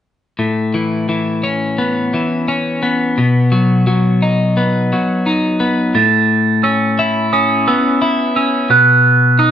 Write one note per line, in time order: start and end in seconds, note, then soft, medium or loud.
0.39 2.13 A2 soft
0.74 1.08 E3 soft
1.09 2.12 E3 soft
1.44 2.47 C#4 soft
1.78 2.82 B3 soft
2.14 3.18 E3 soft
2.48 3.17 C#4 soft
2.83 4.57 B3 soft
3.18 4.91 B2 soft
3.52 3.86 F#3 soft
3.87 4.92 F#3 soft
4.22 5.25 D#4 soft
4.57 5.59 B3 soft
4.93 5.96 F#3 soft
5.26 5.95 D#4 soft
5.60 5.95 B3 soft
5.95 7.68 A2 soft
5.95 6.64 A6 medium
6.63 7.32 C#4 soft
6.63 7.33 E6 soft
6.99 8.01 E4 medium
7.33 8.35 C#4 soft
7.33 7.67 D#6 medium
7.68 8.71 B3 soft
7.68 8.35 E6 soft
8.02 8.71 E4 soft
8.36 8.71 C#4 soft
8.36 8.71 E6 medium
8.70 9.51 B2 soft
8.70 9.40 F#6 medium
9.39 9.51 D#4 soft
9.39 9.51 D#6 medium